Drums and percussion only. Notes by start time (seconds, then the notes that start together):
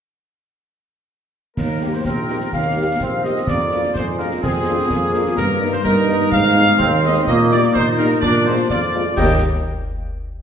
1.57 concert bass drum, snare, crash
1.81 snare
1.93 snare
2.05 concert bass drum, snare
2.29 snare
2.41 snare
2.53 concert bass drum, snare
3.00 concert bass drum, snare
3.24 snare
3.36 snare
3.47 concert bass drum, snare
3.71 snare
3.83 snare
3.95 concert bass drum, snare
4.19 snare
4.31 snare
4.43 concert bass drum, snare
4.90 concert bass drum, snare
5.14 snare
5.26 snare
5.37 concert bass drum, snare, crash
5.61 snare
5.73 snare
5.85 concert bass drum, snare
6.09 snare
6.20 snare
6.32 concert bass drum, snare
6.80 concert bass drum, snare
7.03 snare
7.15 snare
7.27 concert bass drum, snare
7.51 snare
7.63 snare
7.75 concert bass drum, snare
7.99 snare
8.11 snare
8.23 concert bass drum, snare
8.70 concert bass drum, snare
9.17 concert bass drum, snare, crash